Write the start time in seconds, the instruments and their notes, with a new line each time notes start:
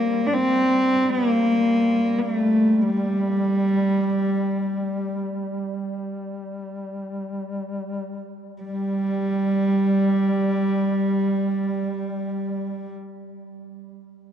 Already playing: duduk G3, cello A#3
0.27 cello D4
0.34 cello C4
1.10 cello B3
1.29 cello A#3
2.19 cello A#3
2.32 cello A3
2.82 cello G3
8.61 duduk G3, cello G3